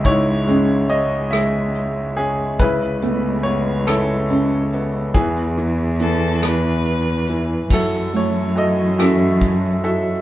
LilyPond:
<<
  \new Staff \with { instrumentName = "Violin" } { \time 6/8 \key fis \dorian \tempo 4. = 47 r2. | r2. | r4 a'8 b'4. | r2. | }
  \new Staff \with { instrumentName = "Grand piano" } { \time 6/8 \key fis \dorian << { cis''4 dis''8 e''4 gis'8 | b'4 cis''8 a'4. | gis'2 r4 | a'8 cis''8 dis''8 e''4 e''8 | } \\ { e'4. r4. | e'4. e'4. | b2 r4 | e'4. r4. | } >> }
  \new Staff \with { instrumentName = "Grand piano" } { \time 6/8 \key fis \dorian <gis, gis cis'>8 gis8 cis'8 gis4 cis'8 | cis8 a8 b8 cis'4 b8 | e8 e8 e8 e4 e8 | fis4 <e' fis' a'>8 <e' fis' a'>4 <e' fis' a'>8 | }
  \new Staff \with { instrumentName = "Felt piano" } { \time 6/8 \key fis \dorian r8 cis'4 r4. | r8 b4 r8 cis'4 | r4 b4 r4 | r8 a4 cis'4 r8 | }
  \new Staff \with { instrumentName = "String section" } { \time 6/8 \key fis \dorian r2. | r2. | r2. | <e a cis' fis'>2. | }
  \new Staff \with { instrumentName = "Cello" } { \clef bass \time 6/8 \key fis \dorian cis,2. | cis,2. | e,2. | fis,2. | }
  \new DrumStaff \with { instrumentName = "Drums" } \drummode { \time 6/8 <hh bd>8 hh8 hh8 <hh ss>8 hh8 hh8 | <hh bd>8 hh8 hh8 <hh ss>8 hh8 hh8 | <hh bd>8 hh8 hh8 <hh ss>8 hh8 hh8 | <cymc bd>8 hh8 hh8 <hh ss>8 <hh bd>8 hh8 | }
>>